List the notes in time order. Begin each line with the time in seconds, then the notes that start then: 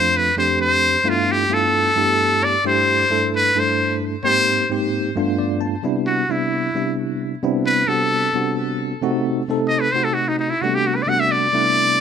Already playing: F2 A3 C4 D4 F4 C5
0.17 B4
0.36 F2 A3 C4 D4 G4 C5
0.61 C5
1.04 G2 A3 B3 D4 E4 F4
1.09 F4
1.31 G4
1.49 G2 A3 B3 D4 E4 F4
1.54 A4
1.96 G2 A3 B3 D4 E4 G4
2.44 D5
2.64 G2 A3 D4 E4 G4 C5
3.10 G2 A3 D4 E4 A4
3.36 B4
3.55 G2 A3 D4 E4 A4
3.59 C5
4.23 G#2 A#3 C4 D#4 G4 C5
4.70 G#2 A#3 C4 D#4 G4
5.16 G2 A3 B3 D4 F4
5.38 D5
5.61 A5
5.83 C3 G3 B3 D4 E4
6.07 F#4
6.29 C3 G3 B3 D4 E4
6.75 C3 G3 B3 D4 E4
7.43 C3 G3 B3 C4 D4 E4
7.66 B4
7.87 C3 G3 B3 C4 D4 F#4 A4
8.34 C3 G3 B3 C4 D4 F#4
9.02 C3 A3 C4 D#4 F#4
9.48 C3 A3 C4 D#4 A4
9.68 D#5
9.81 B4
9.92 C3 A3 C4 D#4 F#4 C5
10.04 A4
10.14 F#4
10.28 D#4
10.39 D#4
10.50 E4
10.62 C3 G3 A3 B3 D4 F#4
10.75 G4
10.87 F#4
10.95 B4
11.02 D5
11.07 C3 G3 A3 B3 D4 F#4 F#5
11.20 E5
11.31 D5
11.52 C3 G3 A3 B3 D4 E4